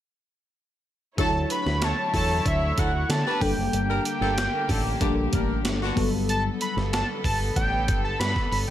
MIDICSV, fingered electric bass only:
0, 0, Header, 1, 2, 480
1, 0, Start_track
1, 0, Tempo, 638298
1, 890, Time_signature, 4, 2, 24, 8
1, 6545, End_track
2, 0, Start_track
2, 0, Title_t, "Fingered electric bass"
2, 0, Program_c, 0, 33
2, 891, Note_on_c, 0, 38, 98
2, 1082, Note_off_c, 0, 38, 0
2, 1249, Note_on_c, 0, 38, 95
2, 1441, Note_off_c, 0, 38, 0
2, 1607, Note_on_c, 0, 40, 80
2, 1800, Note_off_c, 0, 40, 0
2, 1846, Note_on_c, 0, 38, 107
2, 2040, Note_off_c, 0, 38, 0
2, 2090, Note_on_c, 0, 38, 87
2, 2282, Note_off_c, 0, 38, 0
2, 2325, Note_on_c, 0, 50, 107
2, 2423, Note_off_c, 0, 50, 0
2, 2569, Note_on_c, 0, 31, 97
2, 2665, Note_off_c, 0, 31, 0
2, 2686, Note_on_c, 0, 30, 81
2, 2784, Note_off_c, 0, 30, 0
2, 2803, Note_on_c, 0, 31, 91
2, 2998, Note_off_c, 0, 31, 0
2, 3164, Note_on_c, 0, 31, 102
2, 3358, Note_off_c, 0, 31, 0
2, 3527, Note_on_c, 0, 33, 86
2, 3720, Note_off_c, 0, 33, 0
2, 3766, Note_on_c, 0, 34, 92
2, 3959, Note_off_c, 0, 34, 0
2, 4011, Note_on_c, 0, 33, 80
2, 4247, Note_off_c, 0, 33, 0
2, 4247, Note_on_c, 0, 31, 99
2, 4440, Note_off_c, 0, 31, 0
2, 4490, Note_on_c, 0, 31, 90
2, 4873, Note_off_c, 0, 31, 0
2, 5087, Note_on_c, 0, 31, 98
2, 5279, Note_off_c, 0, 31, 0
2, 5447, Note_on_c, 0, 31, 82
2, 5639, Note_off_c, 0, 31, 0
2, 5687, Note_on_c, 0, 33, 95
2, 5931, Note_off_c, 0, 33, 0
2, 5931, Note_on_c, 0, 31, 87
2, 6122, Note_off_c, 0, 31, 0
2, 6164, Note_on_c, 0, 43, 96
2, 6262, Note_off_c, 0, 43, 0
2, 6405, Note_on_c, 0, 31, 87
2, 6502, Note_off_c, 0, 31, 0
2, 6545, End_track
0, 0, End_of_file